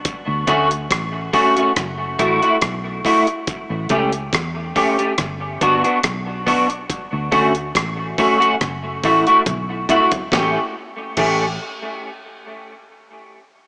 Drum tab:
CC |----------------|----------------|----------------|----x-----------|
HH |x-xxx-oxx-xxx-ox|x-xxx-oxx-xxx-ox|x-oxx-oxx-oxx-xx|----------------|
SD |----r---r---r---|----r---r---r---|----r---r-------|o---------------|
T1 |----------------|----------------|------------o---|----------------|
T2 |----------------|----------------|--------------o-|----------------|
FT |----------------|----------------|---------------o|----------------|
BD |o-o-o-o-o-o-o-o-|o-o-o-o-o-o-o-o-|o-o-o-o-o-o-o---|o---o-----------|